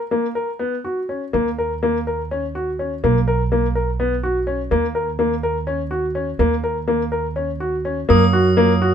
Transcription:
0.11 0.25 A#3 medium
0.35 0.49 A#4 medium
0.59 0.74 B3 medium
0.85 0.99 F#4 soft
1.09 1.23 C#4 soft
1.33 3.00 D#2 medium
1.33 1.47 A#3 medium
1.58 1.72 A#4 medium
1.83 1.97 A#3 medium
2.07 2.21 A#4 medium
2.31 2.45 C#4 medium
2.55 2.69 F#4 medium
2.79 2.93 C#4 medium
3.04 4.68 B1 medium
3.04 3.17 A#3 medium
3.28 3.41 A#4 medium
3.52 3.65 A#3 medium
3.75 3.89 A#4 medium
4.00 4.13 B3 medium
4.23 4.37 F#4 medium
4.47 4.61 C#4 medium
4.71 6.36 D#2 medium
4.71 4.85 A#3 medium
4.95 5.09 A#4 medium
5.19 5.33 A#3 medium
5.43 5.57 A#4 medium
5.67 5.81 C#4 medium
5.91 6.05 F#4 medium
6.15 6.29 C#4 medium
6.39 8.06 D#2 medium
6.39 6.53 A#3 medium
6.64 6.77 A#4 medium
6.88 7.01 A#3 medium
7.12 7.26 A#4 medium
7.36 7.50 C#4 medium
7.60 7.74 F#4 medium
7.85 7.99 C#4 medium
8.09 8.94 F#2 medium
8.09 8.94 F#3 medium
8.09 8.23 A#3 medium
8.09 8.94 F4 medium
8.09 8.94 A#4 medium
8.09 8.94 D#6 medium
8.33 8.47 F#4 medium
8.57 8.71 A#3 medium
8.82 8.94 F#4 medium

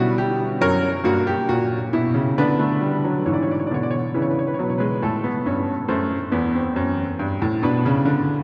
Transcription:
0.00 0.59 B2 medium
0.00 0.59 G3 medium
0.00 0.18 F#4 medium
0.00 0.58 B4 medium
0.18 0.45 G4 medium
0.61 0.89 F#2 medium
0.61 0.88 F#3 medium
0.61 0.89 A#4 medium
0.61 2.33 C#5 medium
1.04 1.31 G2 medium
1.04 2.33 A#3 medium
1.04 1.26 F#4 medium
1.27 1.48 G4 medium
1.49 1.76 A#2 medium
1.49 1.76 F#4 medium
1.93 2.14 B2 medium
1.93 2.20 E4 medium
2.14 2.36 C#3 medium
2.38 3.24 D3 medium
2.38 2.59 B3 medium
2.38 3.24 D4 medium
2.38 3.24 B4 medium
2.59 2.81 A3 medium
2.81 3.03 G3 medium
3.04 3.26 F#3 medium
3.26 3.53 G#2 medium
3.26 3.53 E3 medium
3.26 3.34 C#5 medium
3.33 3.42 D5 medium
3.43 3.50 C#5 medium
3.51 3.59 D5 soft
3.60 3.67 C#5 soft
3.67 3.75 D5 soft
3.71 3.98 B2 medium
3.71 3.98 D3 medium
3.71 3.82 C#5 medium
3.83 3.91 D5 medium
3.91 4.13 C#5 medium
4.14 4.41 C#3 medium
4.14 4.42 E3 medium
4.14 4.22 B4 soft
4.22 4.30 C#5 soft
4.30 4.38 B4 soft
4.39 4.46 C#5 medium
4.47 4.55 B4 medium
4.54 4.62 C#5 medium
4.59 4.86 B2 medium
4.59 4.80 F#3 medium
4.64 4.71 B4 soft
4.70 4.78 C#5 soft
4.78 5.01 G#3 medium
4.78 5.01 B4 medium
5.02 5.30 A2 medium
5.02 5.23 A3 medium
5.02 5.87 A4 medium
5.24 5.45 B3 medium
5.46 5.73 G2 medium
5.46 5.73 C#4 medium
5.88 6.16 F#2 medium
5.88 6.16 A3 medium
5.88 7.59 C5 medium
6.32 6.59 E2 medium
6.32 6.53 B3 medium
6.55 7.61 C4 medium
6.76 7.03 F#2 medium
7.19 7.41 G2 medium
7.42 7.63 A2 medium
7.63 7.84 B2 medium
7.63 8.43 D4 medium
7.63 8.43 B4 medium
7.85 8.07 C#3 medium
8.05 8.33 D3 medium

